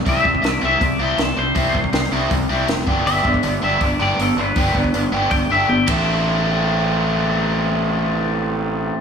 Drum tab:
RD |----------------|----------------|----------------|--------------x-|
HH |o---o---o---o---|o---o---o---o---|o---o---o---o---|o---o---o-------|
SD |----o-------o---|----oo------o---|----------------|----------------|
T1 |----------------|----------------|----------------|------------o---|
BD |o-oo----o-------|o-oo----o-----o-|--oo----o-------|o-oo----o-----o-|

RD |----------------|----------------|
HH |----------------|----------------|
SD |----------------|----------------|
T1 |----------------|----------------|
BD |----------------|----------------|